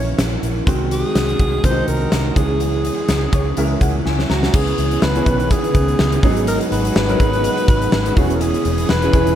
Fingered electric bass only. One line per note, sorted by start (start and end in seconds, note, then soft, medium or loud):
0.00 0.12 A#1 medium
0.18 0.36 A#1 loud
0.43 0.60 A#1 loud
0.67 1.02 C2 medium
1.15 1.33 C2 medium
1.40 1.57 C2 medium
1.64 1.81 C2 medium
1.88 2.05 C2 medium
2.12 2.29 C2 medium
2.36 2.88 C#2 loud
3.09 3.26 C#2 medium
3.33 3.50 C#2 medium
3.57 3.75 C#2 medium
3.81 3.99 C#2 medium
4.06 4.23 C#2 medium
4.30 4.47 C#2 medium
4.54 4.71 C#2 medium
4.78 4.95 C#2 medium
5.02 5.20 C#2 medium
5.26 5.53 B1 medium
5.75 5.92 C#2 loud
5.99 6.17 C#2 loud
6.23 6.58 G#1 loud
6.72 6.89 G#1 medium
6.96 7.13 G#1 medium
7.20 7.47 G#1 medium
7.68 7.86 G#1 loud
7.93 8.10 G#1 loud
8.17 8.52 E1 loud
8.65 8.83 E1 medium
8.90 9.07 E1 medium
9.14 9.35 E1 medium